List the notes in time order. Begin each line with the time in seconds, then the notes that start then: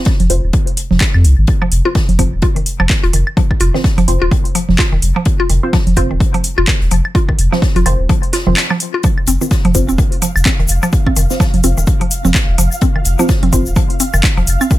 0.05 kick, snare, closed hi-hat
0.20 F1, closed hi-hat, open hi-hat, low conga
0.30 F1 C4 F4 C5, closed hi-hat, open hi-hat
0.44 D#1
0.53 kick, closed hi-hat
0.67 open hi-hat
0.77 closed hi-hat, open hi-hat
0.91 F1, snare, low conga
1.00 kick, snare, clap, closed hi-hat, claves
1.14 F2, claves
1.24 C2, closed hi-hat, open hi-hat
1.38 G#1
1.47 kick, closed hi-hat
1.62 F3, claves
1.72 F1, closed hi-hat, open hi-hat
1.85 C4 F4 C5
1.95 D#3, kick, snare, closed hi-hat
2.09 F1, open hi-hat, low conga
2.19 F1 F3 C4 F4 C5, kick, closed hi-hat, open hi-hat
2.33 D#1
2.42 F4, kick, closed hi-hat
2.56 D#3, open hi-hat
2.66 closed hi-hat, open hi-hat
2.80 F1 F3, claves
2.89 kick, snare, clap, closed hi-hat
3.03 D#1 F4, closed hi-hat
3.13 F1 D#3, closed hi-hat, open hi-hat
3.27 claves
3.37 F3, kick, closed hi-hat
3.51 kick, claves
3.60 F1 F4, closed hi-hat, open hi-hat
3.74 D#3 C4 F4 C5, snare
3.84 kick, snare, closed hi-hat
3.98 F1 F3, closed hi-hat, open hi-hat, low conga
4.08 F1 C4 F4 C5, closed hi-hat, open hi-hat
4.22 D#1 F4
4.31 D#3, kick, closed hi-hat
4.45 open hi-hat
4.55 F3, closed hi-hat, open hi-hat
4.69 F1, snare, low conga
4.78 F4, kick, snare, clap, closed hi-hat, claves
4.92 D#1 D#3
5.02 F1, closed hi-hat, open hi-hat
5.16 F3
5.25 kick, closed hi-hat
5.40 F4, claves
5.50 F1 D#3, closed hi-hat, open hi-hat
5.63 C4 F4 C5
5.73 F3, kick, snare, closed hi-hat
5.87 F1, open hi-hat, low conga
5.96 F1 C4 F4 C5, kick, closed hi-hat, open hi-hat
6.11 D#1 D#3
6.20 kick, closed hi-hat
6.34 F3, open hi-hat
6.44 closed hi-hat, open hi-hat
6.58 F1 F4, claves
6.67 D#3, kick, snare, clap, closed hi-hat
6.81 D#1, closed hi-hat
6.91 F1 F3, closed hi-hat, open hi-hat
7.05 claves
7.15 F4, kick, closed hi-hat
7.29 D#3, kick, claves
7.39 F1, closed hi-hat, open hi-hat
7.52 F3 C4 F4 C5, snare
7.62 kick, snare, closed hi-hat
7.76 F1 F4, closed hi-hat, open hi-hat, low conga
7.86 F1 D#3 C4 F4 C5, closed hi-hat, open hi-hat, claves
7.99 D#1
8.09 F3, kick, closed hi-hat
8.23 open hi-hat
8.33 F4, snare, closed hi-hat, open hi-hat
8.47 F1 D#3 C4 F4 C5, low conga
8.56 snare, clap, closed hi-hat, claves
8.70 F3, claves
8.80 closed hi-hat, open hi-hat
8.94 F4
9.03 F3 F5, kick, closed hi-hat, shaker
9.18 claves
9.27 F1 C4, closed hi-hat, open hi-hat, shaker
9.41 D#3 C4 F4 C5, shaker
9.51 kick, snare, closed hi-hat, shaker
9.65 F1 F3, open hi-hat, low conga
9.75 F1 C4 F4 C5, kick, closed hi-hat, open hi-hat, shaker
9.89 D#1 C4, shaker
9.98 D#3, kick, closed hi-hat, shaker
10.12 open hi-hat
10.22 F3, closed hi-hat, open hi-hat, shaker
10.36 F1, claves, shaker
10.45 C4, kick, snare, clap, closed hi-hat, shaker
10.59 D#1 D#3, closed hi-hat
10.68 F1, closed hi-hat, open hi-hat, shaker
10.83 F3, claves, shaker
10.93 kick, closed hi-hat, shaker
11.07 C4, kick, claves
11.16 F1 D#3, closed hi-hat, open hi-hat, shaker
11.30 C4 F4 C5, snare, shaker
11.40 F3, kick, snare, closed hi-hat, shaker
11.54 F1, closed hi-hat, open hi-hat, low conga
11.64 F1 C4 F4 C5, closed hi-hat, open hi-hat, shaker
11.77 D#1 D#3, shaker
11.87 kick, closed hi-hat, shaker
12.01 F3, open hi-hat
12.11 closed hi-hat, open hi-hat, shaker
12.24 F1 C4, snare, low conga, shaker
12.35 D#3, kick, snare, clap, closed hi-hat, claves, shaker
12.48 D#1
12.58 F1 F3, closed hi-hat, open hi-hat, shaker
12.72 shaker
12.81 C4, kick, closed hi-hat, shaker
12.96 D#3, claves
13.05 F1, closed hi-hat, open hi-hat, shaker
13.19 F3 C4 F4 C5, shaker
13.29 kick, snare, closed hi-hat, shaker
13.43 F1 C4, open hi-hat, low conga
13.53 F1 D#3 C4 F4 C5, kick, closed hi-hat, open hi-hat, shaker
13.66 D#1, shaker
13.76 F3, kick, closed hi-hat, shaker
13.90 open hi-hat
14.00 C4, closed hi-hat, open hi-hat, shaker
14.14 F1 D#3, claves, shaker
14.24 kick, snare, clap, closed hi-hat, shaker
14.37 D#1 F3, closed hi-hat
14.47 F1, closed hi-hat, open hi-hat, shaker
14.61 C4, claves, shaker
14.71 D#3, kick, closed hi-hat, shaker